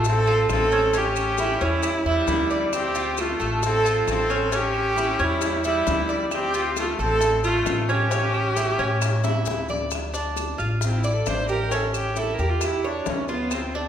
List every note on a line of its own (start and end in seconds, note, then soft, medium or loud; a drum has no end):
0.00 0.46 A1 medium
0.00 0.26 A4 medium
0.04 0.48 C4 medium
0.04 high bongo medium
0.04 maracas medium
0.09 0.49 A4 loud
0.27 0.71 F4 medium
0.27 high bongo soft
0.49 1.55 A1 medium
0.49 0.98 C4 medium
0.49 0.99 A4 loud
0.49 high bongo medium
0.49 low bongo medium
0.49 claves medium
0.49 maracas medium
0.71 0.93 C#4 medium
0.71 maracas soft
0.93 1.37 C#4 medium
0.93 1.66 C#4 medium
0.93 high bongo medium
0.93 maracas medium
0.98 1.65 G4 loud
1.16 high bongo soft
1.16 claves medium
1.16 maracas medium
1.38 1.61 E4 medium
1.38 high bongo medium
1.38 maracas medium
1.61 2.03 E2 medium
1.61 1.95 G3 medium
1.61 2.05 C#4 medium
1.61 2.07 E4 loud
1.61 high bongo soft
1.61 maracas soft
1.83 high bongo medium
1.83 claves medium
1.83 maracas medium
2.05 2.26 E2 medium
2.05 2.70 G3 medium
2.05 2.49 E4 medium
2.05 2.70 E4 medium
2.27 3.33 D2 medium
2.27 high bongo medium
2.27 low bongo medium
2.27 maracas medium
2.50 2.94 D5 medium
2.50 high bongo soft
2.50 maracas soft
2.73 3.22 C4 medium
2.73 3.22 G4 medium
2.73 high bongo medium
2.73 claves medium
2.73 maracas medium
2.95 3.39 F4 medium
2.95 high bongo soft
2.95 maracas medium
3.17 3.64 A3 medium
3.17 3.64 F4 medium
3.17 high bongo medium
3.17 claves medium
3.17 maracas medium
3.40 4.03 A1 medium
3.40 3.83 A4 medium
3.40 high bongo soft
3.40 maracas soft
3.63 4.06 C4 medium
3.63 4.05 A4 loud
3.63 high bongo medium
3.63 maracas medium
3.85 4.29 F4 medium
3.85 maracas medium
4.07 5.13 A1 medium
4.07 4.56 C4 medium
4.07 high bongo medium
4.07 low bongo medium
4.07 claves medium
4.07 maracas medium
4.12 4.57 A4 medium
4.30 4.51 C#4 medium
4.30 maracas soft
4.52 4.96 C#4 medium
4.52 5.24 C#4 medium
4.52 5.25 G4 loud
4.52 high bongo medium
4.52 maracas medium
4.74 high bongo soft
4.74 claves medium
4.96 5.19 E4 medium
4.96 high bongo medium
4.96 maracas medium
5.19 5.83 E2 loud
5.19 5.66 G3 medium
5.19 5.63 C#4 medium
5.19 high bongo soft
5.19 maracas soft
5.23 5.66 E4 medium
5.41 high bongo medium
5.41 claves medium
5.41 maracas medium
5.64 6.29 G3 medium
5.64 6.08 E4 medium
5.64 6.29 E4 medium
5.64 maracas medium
5.87 6.93 D2 medium
5.87 high bongo medium
5.87 low bongo medium
5.87 maracas medium
6.09 6.53 D5 medium
6.09 high bongo soft
6.09 maracas soft
6.31 6.75 C4 medium
6.31 6.74 G4 loud
6.31 high bongo medium
6.31 claves medium
6.31 maracas medium
6.54 6.98 F4 medium
6.54 high bongo soft
6.54 maracas medium
6.76 6.98 A3 medium
6.76 6.99 F4 medium
6.76 high bongo medium
6.76 claves medium
6.76 maracas medium
6.99 7.62 A1 loud
6.99 7.42 C4 medium
6.99 7.43 A4 medium
6.99 7.41 A4 loud
6.99 high bongo soft
6.99 maracas soft
7.21 high bongo medium
7.21 maracas medium
7.44 7.87 A3 medium
7.44 7.86 F4 medium
7.44 7.88 F4 medium
7.44 high bongo soft
7.44 maracas medium
7.66 8.72 A1 medium
7.66 high bongo medium
7.66 low bongo medium
7.66 claves medium
7.66 maracas medium
7.89 8.10 C#4 medium
7.89 9.43 C#4 medium
7.89 9.43 G4 loud
7.89 maracas soft
8.11 8.55 C#4 medium
8.11 high bongo medium
8.11 maracas medium
8.34 high bongo soft
8.34 claves medium
8.56 8.78 E4 medium
8.56 high bongo medium
8.56 maracas medium
8.79 9.42 A2 loud
8.79 9.22 C#4 medium
8.79 high bongo soft
8.79 maracas soft
9.02 high bongo medium
9.02 claves medium
9.02 maracas medium
9.24 9.67 E4 medium
9.24 high bongo loud
9.24 maracas medium
9.45 10.53 D2 medium
9.45 high bongo loud
9.45 maracas medium
9.69 9.91 D5 medium
9.69 low bongo medium
9.69 maracas soft
9.91 high bongo medium
9.91 claves medium
9.91 maracas medium
10.14 10.57 D4 medium
10.14 maracas medium
10.36 high bongo medium
10.36 claves medium
10.36 maracas medium
10.58 11.23 A1 medium
10.58 11.02 F4 medium
10.58 maracas soft
10.81 11.00 C4 medium
10.81 high bongo medium
10.81 maracas medium
10.98 11.15 E4 medium
11.04 11.48 D5 medium
11.04 maracas medium
11.13 11.30 A4 medium
11.26 12.33 A1 medium
11.26 11.49 C5 medium
11.26 high bongo medium
11.26 low bongo medium
11.26 claves medium
11.26 maracas medium
11.48 11.71 G4 medium
11.48 11.75 A#4 medium
11.48 maracas soft
11.71 12.15 C#4 medium
11.71 11.93 A4 medium
11.71 high bongo medium
11.71 maracas medium
11.94 12.20 G4 medium
11.94 high bongo soft
11.94 claves medium
11.94 maracas medium
12.16 12.38 E4 medium
12.16 12.35 A4 medium
12.16 high bongo soft
12.16 maracas medium
12.34 12.51 A#4 medium
12.38 13.02 E2 medium
12.38 12.83 G4 medium
12.38 maracas soft
12.49 12.67 F4 medium
12.61 high bongo medium
12.61 claves medium
12.61 maracas medium
12.66 12.87 E4 medium
12.84 13.11 D4 medium
12.84 13.28 C#5 medium
12.84 high bongo soft
13.06 13.88 D2 medium
13.06 13.29 C#4 medium
13.06 high bongo medium
13.06 low bongo medium
13.06 maracas medium
13.28 13.56 B3 medium
13.28 13.73 F4 medium
13.28 high bongo soft
13.28 maracas soft
13.51 13.88 C4 medium
13.51 high bongo medium
13.51 claves medium
13.51 maracas medium
13.75 13.88 D4 medium